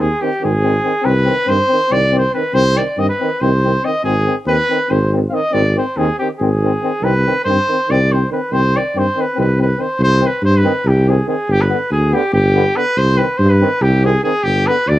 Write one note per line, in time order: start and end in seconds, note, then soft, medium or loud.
0.00 0.11 D#2 medium
0.00 0.23 G#4 medium
0.21 0.30 D#3 medium
0.21 0.30 C4 medium
0.21 0.42 G4 medium
0.41 0.77 G#1 loud
0.41 0.50 D#3 medium
0.41 0.51 C4 medium
0.41 1.06 G#4 medium
0.63 0.72 D#3 medium
0.63 0.71 C4 medium
0.83 0.93 D#3 medium
0.83 0.92 C4 medium
1.02 1.29 C2 loud
1.02 1.14 D#3 medium
1.02 1.12 C4 medium
1.02 1.50 B4 loud
1.25 1.36 D#3 medium
1.25 1.33 C4 medium
1.46 1.60 G2 medium
1.46 1.58 D#3 medium
1.46 1.56 C4 medium
1.46 1.93 C5 loud
1.67 1.76 C4 medium
1.72 1.80 D#3 medium
1.89 2.25 C2 medium
1.89 2.01 D#3 medium
1.89 1.98 C4 medium
1.89 2.14 D5 loud
2.12 2.22 D#3 medium
2.12 2.20 C4 medium
2.18 2.33 C5 loud
2.33 2.44 D#3 medium
2.33 2.41 C4 medium
2.33 2.55 B4 loud
2.53 2.78 C2 loud
2.53 2.62 D#3 soft
2.53 2.63 C4 medium
2.53 2.78 C5 loud
2.75 2.85 D#3 medium
2.75 2.84 C4 medium
2.75 3.00 D5 medium
2.97 3.10 G2 medium
2.97 3.07 D#3 medium
2.97 3.07 C4 medium
2.97 3.09 D#5 medium
3.09 3.42 B4 medium
3.20 3.30 D#3 medium
3.20 3.28 C4 medium
3.41 3.76 C2 loud
3.41 3.52 D#3 medium
3.41 3.50 C4 medium
3.41 3.86 C5 loud
3.64 3.73 D#3 medium
3.64 3.72 C4 medium
3.83 3.94 D#3 medium
3.83 3.91 C4 medium
3.83 4.04 D#5 medium
4.03 4.27 G#1 loud
4.03 4.13 D#3 medium
4.03 4.14 C4 medium
4.03 4.36 G#4 loud
4.26 4.35 D#3 soft
4.26 4.34 C4 medium
4.45 4.58 D#2 medium
4.45 4.57 D#3 medium
4.45 4.56 C4 medium
4.45 4.92 B4 loud
4.69 4.78 D#3 medium
4.69 4.78 C4 medium
4.89 5.25 G#1 loud
4.89 4.99 D#3 medium
4.89 4.98 C4 medium
4.89 5.13 C5 medium
5.12 5.21 D#3 medium
5.12 5.20 C4 medium
5.29 5.41 D#3 medium
5.29 5.39 C4 medium
5.29 5.35 F5 medium
5.34 5.55 D#5 loud
5.52 5.77 G#1 loud
5.52 5.62 D#3 medium
5.52 5.61 C4 medium
5.52 5.76 D5 loud
5.75 5.84 D#3 medium
5.75 5.85 C4 medium
5.75 5.98 C5 medium
5.96 6.09 D#2 medium
5.96 6.07 D#3 medium
5.96 6.06 C4 medium
5.96 6.18 G#4 medium
6.19 6.29 D#3 medium
6.19 6.27 C4 medium
6.19 6.28 G4 medium
6.39 6.74 G#1 loud
6.39 6.49 D#3 medium
6.39 6.49 C4 medium
6.39 7.05 G#4 medium
6.62 6.70 D#3 medium
6.62 6.72 C4 medium
6.82 6.90 D#3 medium
6.82 6.91 C4 medium
7.01 7.26 C2 loud
7.01 7.10 D#3 medium
7.01 7.13 C4 medium
7.01 7.44 B4 loud
7.26 7.34 D#3 medium
7.26 7.34 C4 medium
7.45 7.58 G2 medium
7.45 7.55 D#3 medium
7.45 7.57 C4 medium
7.45 7.92 C5 loud
7.68 7.76 D#3 medium
7.68 7.78 C4 medium
7.88 8.24 C2 loud
7.88 7.97 D#3 medium
7.88 7.99 C4 medium
7.88 8.13 D5 loud
8.10 8.18 D#3 medium
8.10 8.21 C4 medium
8.10 8.32 C5 medium
8.30 8.38 D#3 medium
8.30 8.40 C4 medium
8.30 8.54 B4 medium
8.51 8.75 C2 medium
8.51 8.60 D#3 medium
8.51 8.61 C4 medium
8.51 8.78 C5 loud
8.74 8.83 D#3 medium
8.74 8.82 C4 medium
8.74 8.99 D5 medium
8.95 9.07 G2 medium
8.95 9.04 D#3 medium
8.95 9.05 C4 medium
8.95 9.22 C5 medium
9.16 9.25 D#3 medium
9.16 9.25 C4 medium
9.21 9.39 B4 medium
9.35 9.72 C2 loud
9.35 9.46 D#3 medium
9.35 9.44 C4 medium
9.40 9.59 B4 medium
9.58 9.68 D#3 medium
9.58 9.66 C4 medium
9.58 9.82 B4 medium
9.78 9.87 D#3 medium
9.78 9.86 C4 soft
9.78 10.00 C5 medium
9.99 10.23 C2 loud
10.03 10.28 C5 loud
10.20 10.28 D#3 medium
10.20 10.29 C4 medium
10.27 10.44 B4 loud
10.42 10.66 G2 loud
10.42 10.58 C5 loud
10.57 10.89 B4 medium
10.64 10.72 D#3 medium
10.64 10.72 C4 medium
10.85 11.19 C2 loud
10.85 11.10 G4 medium
11.07 11.15 D#3 medium
11.07 11.16 C4 medium
11.07 11.28 G#4 medium
11.27 11.35 D#3 medium
11.27 11.35 C4 medium
11.27 11.53 G#4 medium
11.47 11.71 G1 loud
11.47 11.63 G4 loud
11.61 11.91 B4 loud
11.69 11.80 D3 medium
11.69 11.77 B3 medium
11.90 12.14 D2 loud
11.90 12.15 G#4 medium
12.11 12.22 D3 medium
12.11 12.20 B3 medium
12.11 12.33 G4 loud
12.33 12.67 G1 loud
12.33 12.78 G4 loud
12.55 12.63 D3 medium
12.55 12.63 B3 medium
12.76 12.84 D3 medium
12.76 12.83 B3 medium
12.76 12.99 B4 loud
12.96 13.20 C2 loud
12.96 13.19 C5 loud
13.17 13.27 D#3 medium
13.17 13.25 C4 medium
13.17 13.39 B4 loud
13.38 13.62 G2 loud
13.38 13.51 C5 loud
13.50 13.83 B4 loud
13.61 13.69 D#3 medium
13.61 13.69 C4 medium
13.81 14.15 C2 loud
13.81 14.03 G4 loud
14.03 14.11 D#3 medium
14.03 14.11 C4 medium
14.03 14.23 G#4 loud
14.23 14.32 D#3 medium
14.23 14.32 C4 medium
14.23 14.45 G#4 loud
14.43 14.67 G1 medium
14.43 14.68 G4 loud
14.67 14.76 D3 medium
14.67 14.75 B3 medium
14.67 14.90 B4 loud
14.88 14.99 D2 loud
14.88 14.99 D5 loud